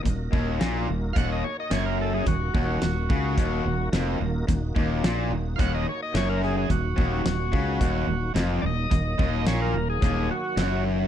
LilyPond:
<<
  \new Staff \with { instrumentName = "Tonewheel organ" } { \time 4/4 \key ees \minor \tempo 4 = 108 r2 <f'' ges''>16 ees''16 des''16 ees''16 des''16 bes'16 a'16 aes'16 | ges'2. r4 | r2 <f'' ges''>16 ees''16 des''16 ees''16 des''16 bes'16 aes'16 aes'16 | ges'2. r8 <d'' ees''>8~ |
<d'' ees''>4 des''16 bes'8 aes'8. ges'4 r8 | }
  \new Staff \with { instrumentName = "Tonewheel organ" } { \time 4/4 \key ees \minor <bes ees' ges' bes'>1 | <bes ees' ges' bes'>1 | <bes ees' ges'>1 | <ges bes ees'>1 |
<ees ges bes>1 | }
  \new Staff \with { instrumentName = "Distorted electric guitar" } { \clef bass \time 4/4 \key ees \minor ees,8 ees,8 bes,8 ees,8 ees,8 r8 ges,4 | ees,8 ees,8 ees,8 des8 ees,8 ees,8 f,8 ees,8 | ees,8 ees,8 bes,8 ees,8 ees,8 r8 ges,4 | ees,8 ees,8 ees,8 des8 ees,8 ees,8 f,8 ees,8 |
ees,8 ees,8 bes,8 ees,8 ees,8 r8 ges,4 | }
  \new Staff \with { instrumentName = "Overdriven electric guitar" } { \clef bass \time 4/4 \key ees \minor ees,8 ees,8 bes,8 ees,8 ees,8 r8 ges,4 | ees,8 ees,8 ees,8 des8 ees,8 ees,8 f,8 ees,8 | ees,8 ees,8 bes,8 ees,8 ees,8 r8 ges,4 | ees,8 ees,8 ees,8 des8 ees,8 ees,8 f,8 ees,8 |
ees,8 ees,8 bes,8 ees,8 ees,8 r8 ges,4 | }
  \new Staff \with { instrumentName = "Fretless electric bass" } { \clef bass \time 4/4 \key ees \minor ees,,8 ees,,8 bes,,8 ees,,8 ees,,8 r8 ges,,4 | ees,,8 ees,,8 ees,,8 des,8 ees,,8 ees,,8 f,,8 ees,,8 | ees,,8 ees,,8 bes,,8 ees,,8 ees,,8 r8 ges,,4 | ees,,8 ees,,8 ees,,8 des,8 ees,,8 ees,,8 f,,8 ees,,8 |
ees,,8 ees,,8 bes,,8 ees,,8 ees,,8 r8 ges,,4 | }
  \new DrumStaff \with { instrumentName = "Drums" } \drummode { \time 4/4 <hh bd>8 bd8 <hh sn>4 <hh bd>4 <hh sn>4 | <hh bd>8 bd8 <hh sn>8 bd8 <hh bd>4 <hh sn>4 | <hh bd>8 bd8 <hh sn>4 <hh bd>4 <hh sn>8 sn8 | <hh bd>8 bd8 <hh sn>8 bd8 <hh bd>4 <hh sn>4 |
<hh bd>8 bd8 <hh sn>4 <hh bd>4 <hh sn>4 | }
>>